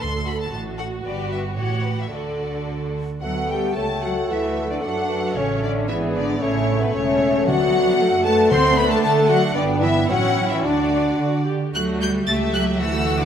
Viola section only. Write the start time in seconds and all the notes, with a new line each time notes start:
0.00 A4
0.51 F#4
2.11 A4
3.22 B3 A4
3.76 A3
4.29 A3
4.84 D4
5.37 C#4
5.89 B3 G#4
6.42 A3 E4
6.94 A3 A4
7.47 B3 F#4
8.00 A3 D4
8.51 A3
9.56 B3
10.09 C#4 E4
10.63 D4 F#4
11.19 F#4
11.46 G4
11.74 A3 F#4
12.27 A3 G4
12.80 A3 F#4